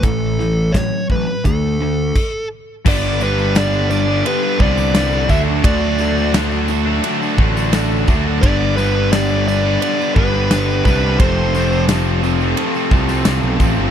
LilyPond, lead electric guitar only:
\new Staff \with { instrumentName = "Lead electric guitar" } { \time 4/4 \key g \major \tempo 4 = 86 a'4 cis''8 b'8 a'4. r8 | d''8 b'8 d''8 d''8 b'8 d''4 e''8 | d''4 r2. | d''8 b'8 d''8 d''8 d''8 b'4 b'8 |
c''4 r2. | }